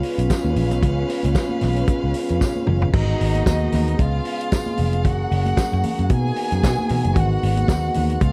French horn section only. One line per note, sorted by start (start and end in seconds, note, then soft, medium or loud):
0.00 2.90 C#3 medium
0.00 2.90 G#3 medium
0.00 2.90 B3 medium
0.00 2.90 F4 medium
2.92 3.98 D#3 medium
2.92 3.97 G#3 medium
2.92 5.02 B3 medium
2.92 3.98 F#4 medium
3.98 5.03 C#3 medium
3.98 5.03 G#3 medium
3.98 6.08 G#4 medium
5.04 6.09 C#3 medium
5.04 6.09 F#3 medium
5.04 7.13 A#3 medium
6.10 8.19 D#3 medium
6.10 8.32 B3 medium
6.10 7.15 F#4 medium
7.16 8.32 G#3 medium
7.16 8.20 F#4 medium
8.22 8.32 C#3 medium
8.22 8.32 G#4 medium